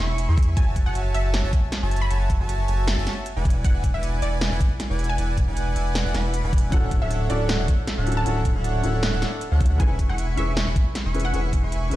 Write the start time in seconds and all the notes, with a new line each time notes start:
0.00 E1 E4 E5 G#5 B5 C#6
0.18 closed hi-hat
0.29 E2 E4 E5 G#5 B5 C#6
0.38 kick, closed hi-hat
0.43 closed hi-hat
0.57 F#1 F#4 C#5 E5 G#5 A5, kick, closed hi-hat
0.76 kick, closed hi-hat
0.86 F#1 F#4 C#5 E5 F#5 G#5 A5
0.95 closed hi-hat
1.14 F#1 F#4 C#5 E5 G#5 A5, closed hi-hat
1.34 snare, closed hi-hat
1.44 F#1 F#4 C#5 E5 G#5 A5
1.53 kick, closed hi-hat
1.72 snare, closed hi-hat
1.82 F#1 F#4 C#5 E5 G#5 A5
1.91 closed hi-hat
1.96 closed hi-hat
2.02 B5
2.11 F#1 F#4 C#5 E5 G#5 A5, closed hi-hat
2.30 kick, closed hi-hat
2.40 F#1 F#4 C#5 E5 G#5 A5
2.49 closed hi-hat
2.68 F#1 F#4 C#5 E5 G#5 A5, closed hi-hat
2.88 snare, closed hi-hat
2.98 F#1 F#4 C#5 E5 G#5 A5
3.07 snare, closed hi-hat
3.26 closed hi-hat
3.36 E1 E4 B4 D5 F#5 G#5
3.45 kick, closed hi-hat
3.50 closed hi-hat
3.64 E1 E4 B4 D5 F#5 G#5, kick, closed hi-hat
3.84 kick, closed hi-hat
3.94 E1 E4 B4 D5 E5 F#5 G#5
4.03 closed hi-hat
4.22 E1 E4 B4 D5 F#5 G#5, closed hi-hat
4.41 snare, closed hi-hat
4.52 E1 E4 B4 D5 F#5 G#5
4.61 kick, closed hi-hat
4.80 snare, closed hi-hat
4.90 E1 E4 B4 D5 F#5 G#5
4.99 closed hi-hat
5.04 closed hi-hat
5.09 G#5
5.18 E1 E4 B4 D5 F#5 G#5, closed hi-hat
5.37 kick, closed hi-hat
5.48 E1 E4 B4 D5 F#5 G#5
5.57 closed hi-hat
5.76 E1 E4 B4 D5 F#5 G#5, closed hi-hat
5.95 snare, closed hi-hat
6.05 E1 E4 B4 D5 F#5 G#5
6.14 E1 E4 B4 D5 F#5 B5, snare, closed hi-hat
6.34 closed hi-hat
6.44 E1 E4 B4 D5 F#5 G#5
6.53 kick, closed hi-hat
6.58 closed hi-hat
6.70 D1 C#4 D4 E4 F#4 A4 C#5 E5 F#5, kick, closed hi-hat
6.74 A4
6.91 kick, closed hi-hat
7.02 D1 D4 A4 C#5 E5 F#5
7.11 closed hi-hat
7.28 D1 C#4 D4 E4 F#4 A4 C#5 D5 E5 F#5, closed hi-hat
7.32 A4
7.49 snare, closed hi-hat
7.59 D1 D4 A4 C#5 E5 F#5
7.68 kick, closed hi-hat
7.87 snare, closed hi-hat
7.98 D1 D4 A4 C#5 E5 F#5
8.06 C#4 E4 F#4 A4, closed hi-hat
8.12 closed hi-hat
8.17 A5
8.24 D1 C#4 D4 E4 F#4 A4 C#5 E5 F#5, closed hi-hat
8.45 kick, closed hi-hat
8.55 D1 D4 A4 C#5 E5 F#5
8.64 closed hi-hat
8.82 D1 C#4 D4 E4 F#4 A4 C#5 E5 F#5, closed hi-hat
9.03 snare, closed hi-hat
9.13 D1 D4 A4 C#5 E5 F#5
9.22 snare, closed hi-hat
9.41 closed hi-hat
9.52 D2 D4 A4 C#5 E5 F#5
9.61 kick, closed hi-hat
9.66 closed hi-hat
9.78 E1 C#4 E4 G#4 B4 E5 G#5 B5 C#6, kick, closed hi-hat
9.99 kick, closed hi-hat
10.09 E1 E4 E5 F#5 G#5 B5 C#6
10.18 closed hi-hat
10.35 E1 C#4 E4 G#4 E5 G#5 B5 C#6, closed hi-hat
10.39 B4
10.57 snare, closed hi-hat
10.67 E1 E4 E5 G#5 B5 C#6
10.76 kick, closed hi-hat
10.95 snare, closed hi-hat
11.05 E1 E4 E5 G#5 B5 C#6
11.13 C#4 E4 G#4 B4, closed hi-hat
11.20 closed hi-hat
11.25 F#5
11.32 E1 C#4 E4 G#4 B4 E5 G#5 B5 C#6, closed hi-hat
11.53 kick, closed hi-hat
11.63 E1 E4 E5 G#5 B5 C#6
11.72 closed hi-hat
11.89 E1 C#4 E4 G#4 E5 G#5 B5 C#6, closed hi-hat